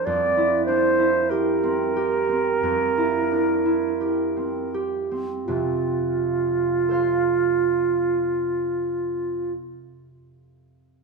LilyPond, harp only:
\new Staff \with { instrumentName = "Harp" } { \time 4/4 \key f \major \tempo 4 = 43 << { r1 | r4 <a' c'' f''>2. | } \\ { <f, bes'>16 e'16 d'16 e'16 g'16 c'16 g'16 c'16 f,16 e'16 d'16 e'16 g'16 c'16 g'16 c'16 | <f, c>1 | } >> }